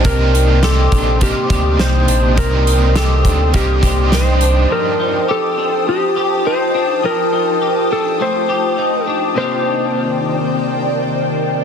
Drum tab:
HH |xxxxxxxx|xxxxxxxx|--------|--------|
SD |--o---o-|--o---o-|--------|--------|
BD |o--ooo--|o--ooo--|--------|--------|

HH |--------|
SD |--------|
BD |--------|